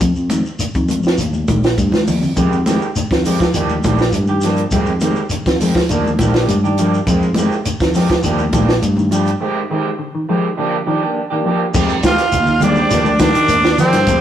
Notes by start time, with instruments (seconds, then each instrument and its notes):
0.00 fingered electric bass F2, clean electric guitar F3, kick, closed hi-hat, high conga, shekere
0.16 fingered electric bass F2, shekere
0.30 clean electric guitar D#3, closed hi-hat, high conga, shekere
0.46 shekere
0.59 clean electric guitar D3, closed hi-hat, high conga, shekere
0.74 fingered electric bass F2, clean electric guitar D#3, kick, closed hi-hat, shekere
0.89 clean electric guitar F3, closed hi-hat, high conga, shekere
1.03 fingered electric bass F2, snare, shekere
1.18 fingered electric bass D#2, clean electric guitar D3, closed hi-hat, high conga, shekere
1.33 high conga, shekere
1.48 fingered electric bass A#1, clean electric guitar D#3, kick, closed hi-hat, high conga, shekere
1.64 snare, closed hi-hat, shekere
1.77 fingered electric bass G2, kick, closed hi-hat, high conga, shekere
1.92 fingered electric bass D2, clean electric guitar D#3, snare, high conga, shekere
2.07 fingered electric bass D#2, clean electric guitar F3, open hi-hat, low conga, shekere
2.21 fingered electric bass F2, low conga, shekere
2.36 fingered electric bass F2, clean electric guitar D#3 F3 G#3 G4, muted clean electric guitar stroke, kick, closed hi-hat, high conga, shekere
2.51 fingered electric bass F2, shekere
2.66 clean electric guitar D#3 G#3 C4 G4, snare, closed hi-hat, high conga, shekere
2.82 shekere
2.96 clean electric guitar D3, closed hi-hat, high conga, shekere
3.11 fingered electric bass F2, clean electric guitar D#3, kick, snare, closed hi-hat, shekere
3.25 clean electric guitar D#3 F3 G#3 C4 G4, open hi-hat, shekere
3.40 fingered electric bass F3, kick, snare, closed hi-hat, shekere
3.54 fingered electric bass D#2, clean electric guitar D3 F3 A#3 D4 G4, closed hi-hat, high conga, shekere
3.69 high conga, shekere
3.83 fingered electric bass A#1, clean electric guitar D#3 F3 A#3 D4 G4, kick, closed hi-hat, high conga, shekere
3.98 snare, shekere
4.12 fingered electric bass G2, closed hi-hat, high conga, shekere
4.27 clean electric guitar D#3 G4, muted clean electric guitar stroke, shekere
4.41 clean electric guitar F3 A#3 D4, snare, closed hi-hat, shekere
4.56 closed hi-hat, shekere
4.71 fingered electric bass F2, clean electric guitar D#3 G3 G#3 C4 G4, kick, closed hi-hat, high conga, shekere
4.86 fingered electric bass F2, shekere
5.00 clean electric guitar D#3 G#3 C4 G4, closed hi-hat, high conga, shekere
5.16 shekere
5.30 clean electric guitar D3, closed hi-hat, high conga, shekere
5.46 fingered electric bass F2, clean electric guitar D#3, kick, snare, closed hi-hat, shekere
5.60 clean electric guitar D#3 F3 G#3 C4, open hi-hat, high conga, shekere
5.75 fingered electric bass F3, kick, snare, shekere
5.89 fingered electric bass D#2, clean electric guitar D3 F3 A#3 D4, muted clean electric guitar stroke, closed hi-hat, high conga, shekere
6.04 high conga, shekere
6.18 fingered electric bass A#1, clean electric guitar D#3 F3 A#3 D4 G4, kick, closed hi-hat, high conga, shekere
6.34 clean electric guitar A#3 D4 G4, snare, closed hi-hat, shekere
6.47 fingered electric bass G2, closed hi-hat, high conga, shekere
6.64 clean electric guitar D#3 D4 G4, muted clean electric guitar stroke, shekere
6.78 clean electric guitar F3 A#3 D4 G4, closed hi-hat, shekere
6.94 shekere
7.05 fingered electric bass F2, clean electric guitar D#3 F3 G#3 C4, muted clean electric guitar stroke, kick, closed hi-hat, high conga, shekere
7.21 fingered electric bass F2, shekere
7.34 clean electric guitar D#3 G#3 C4 G4, closed hi-hat, high conga, shekere
7.52 shekere
7.65 clean electric guitar D3, closed hi-hat, high conga, shekere
7.80 fingered electric bass F2, clean electric guitar D#3, kick, snare, closed hi-hat, shekere
7.94 clean electric guitar D#3 F3 G#3 C4 G4, snare, open hi-hat, shekere
8.10 fingered electric bass F3, kick, snare, closed hi-hat, shekere
8.23 fingered electric bass D#2, clean electric guitar D3 F3 A#3 D4 G4, closed hi-hat, high conga, shekere
8.38 high conga, shekere
8.52 fingered electric bass A#1, clean electric guitar D#3 F3 A#3 D4 G4, kick, closed hi-hat, high conga, shekere
8.69 snare, shekere
8.82 fingered electric bass G2, closed hi-hat, high conga, shekere
8.97 clean electric guitar D#3, high conga, shekere
9.11 clean electric guitar F3 D4 G4, muted clean electric guitar stroke, closed hi-hat, shekere
9.26 closed hi-hat, shekere
9.41 clean electric guitar D#3 G#3 C4 G4, muted clean electric guitar stroke
9.70 clean electric guitar D#3 G#3 C4 G4
9.99 clean electric guitar D3
10.15 clean electric guitar D#3
10.29 clean electric guitar D#3 F3 G#3 C4 G4
10.57 clean electric guitar D3 F3 A#3 D4 G4
10.86 clean electric guitar D#3 F3 D4 G4
11.02 clean electric guitar A#3 D4 G4
11.30 clean electric guitar D#3 A#3 D4 G4
11.45 clean electric guitar F3 A#3 D4 G4
11.74 fingered electric bass F2, clean electric guitar D#3 F3 G#3 C4 G4, kick, crash, high conga, shekere
11.89 shekere
12.03 clean electric guitar D#3 C4 G4, tenor saxophone F4, muted clean electric guitar stroke, kick, snare, closed hi-hat, high conga, shekere
12.08 trumpet F5
12.18 snare, closed hi-hat, shekere
12.32 fingered electric bass D#2, clean electric guitar D3, closed hi-hat, high conga, shekere
12.46 clean electric guitar D#3, low conga, shekere
12.60 clean electric guitar D#3 G3 G#3 C4 G4, tenor saxophone D4, trumpet D5, closed hi-hat, high conga, low conga, shekere
12.75 clean electric guitar G#3 C4 G4, shekere
12.90 fingered electric bass D#2, clean electric guitar D3 F3 A#3 D4 G4, snare, closed hi-hat, high conga, shekere
13.05 fingered electric bass D2, high conga, shekere
13.19 fingered electric bass D#3, clean electric guitar D#3 F3 A#3 D4 G4, tenor saxophone D4, trumpet D5, kick, snare, closed hi-hat, high conga, shekere
13.35 fingered electric bass D#3, clean electric guitar A#3 G4, muted clean electric guitar stroke, closed hi-hat, shekere
13.48 fingered electric bass D#2, closed hi-hat, high conga, shekere
13.64 clean electric guitar D#3, snare, shekere
13.78 clean electric guitar F3 A#3 D4 G4, tenor saxophone C4, trumpet C5, closed hi-hat, low conga, shekere
13.92 fingered electric bass G2, snare, closed hi-hat, shekere
14.06 fingered electric bass F2, clean electric guitar D#3 F3 G#3 C4 G4, kick, closed hi-hat, high conga, shekere